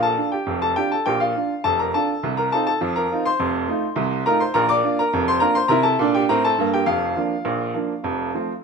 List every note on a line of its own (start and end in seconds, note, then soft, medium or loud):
0.00 0.14 A#1 medium
0.00 0.15 A#2 medium
0.00 0.27 A5 medium
0.04 0.32 A4 medium
0.18 0.34 D4 soft
0.18 0.35 F4 soft
0.32 0.61 G4 soft
0.32 0.56 G5 medium
0.46 0.73 F1 medium
0.46 0.72 F2 medium
0.62 0.77 A4 medium
0.62 0.77 A5 medium
0.76 0.93 D4 soft
0.76 0.94 F4 soft
0.76 0.91 G4 medium
0.76 0.92 G5 medium
0.92 1.07 A4 medium
0.92 1.07 A5 medium
1.06 1.32 A#1 medium
1.06 1.32 A#2 medium
1.06 1.21 G4 medium
1.06 1.21 G5 medium
1.20 1.35 F4 medium
1.20 1.62 F5 medium
1.36 1.52 D4 soft
1.36 1.52 F4 soft
1.64 1.89 F1 medium
1.64 1.90 F2 medium
1.64 1.79 A4 medium
1.64 1.79 A5 medium
1.79 1.94 A#4 medium
1.79 1.94 A#5 medium
1.94 2.11 D4 soft
1.94 2.11 F4 soft
1.94 2.35 A4 medium
1.94 2.29 A5 medium
2.23 2.48 C2 medium
2.23 2.48 C3 medium
2.37 2.52 A#4 medium
2.37 2.52 A#5 medium
2.52 2.69 C4 soft
2.52 2.70 D#4 soft
2.52 2.69 F4 soft
2.52 2.66 A4 medium
2.52 2.65 A5 medium
2.67 2.95 A4 medium
2.67 2.94 A5 medium
2.81 3.06 F2 medium
2.81 3.06 F3 medium
2.96 3.24 A#4 medium
2.96 3.24 A#5 medium
3.12 3.28 C4 soft
3.12 3.28 D#4 soft
3.12 3.28 F4 medium
3.25 4.23 C5 medium
3.25 4.23 C6 medium
3.39 3.64 F1 medium
3.39 3.64 F2 medium
3.68 3.84 A3 medium
3.68 3.85 D#4 medium
3.68 3.85 F4 soft
3.96 4.21 C2 medium
3.96 4.22 C3 medium
4.26 4.43 A3 medium
4.26 4.43 D#4 medium
4.26 4.43 F4 medium
4.26 4.40 A#4 medium
4.26 4.41 A#5 medium
4.40 4.55 C5 medium
4.40 4.55 C6 medium
4.54 4.80 A#1 medium
4.54 4.80 A#2 medium
4.54 4.69 A#4 medium
4.54 4.69 A#5 loud
4.69 4.97 D5 medium
4.69 4.97 D6 loud
4.84 5.00 A#3 soft
4.84 5.00 D4 soft
4.84 5.01 F4 medium
4.99 5.27 A#4 medium
4.99 5.22 A#5 medium
5.13 5.38 F1 medium
5.13 5.38 F2 medium
5.28 5.42 C5 medium
5.28 5.43 C6 loud
5.40 5.57 A#3 medium
5.40 5.57 D4 medium
5.40 5.58 F4 medium
5.40 5.56 A#4 medium
5.40 5.56 A#5 loud
5.55 5.70 C5 medium
5.55 5.71 C6 loud
5.68 5.93 C3 medium
5.68 5.95 E4 medium
5.68 5.84 A#4 medium
5.68 5.85 A#5 loud
5.83 6.13 A4 medium
5.83 6.08 A5 medium
5.99 6.23 A#2 medium
5.99 6.24 D4 medium
6.15 6.29 G4 medium
6.15 6.30 G5 medium
6.29 6.53 A2 medium
6.29 6.54 C4 medium
6.29 6.44 A#4 medium
6.29 6.44 A#5 loud
6.45 6.72 A4 medium
6.45 6.68 A5 medium
6.58 6.82 G2 medium
6.58 6.83 A#3 medium
6.74 6.88 G4 medium
6.74 6.88 G5 medium
6.86 7.12 F1 medium
6.86 7.12 F2 medium
6.86 8.64 F4 medium
6.86 8.51 F5 medium
7.17 7.33 F3 soft
7.17 7.33 A#3 soft
7.17 7.33 D4 medium
7.45 7.71 A#1 medium
7.45 7.71 A#2 medium
7.74 7.91 F3 soft
7.74 7.91 A#3 soft
7.74 7.92 D4 soft
8.04 8.29 F1 medium
8.04 8.30 F2 medium
8.35 8.51 F3 soft
8.35 8.51 A3 soft
8.35 8.51 C4 soft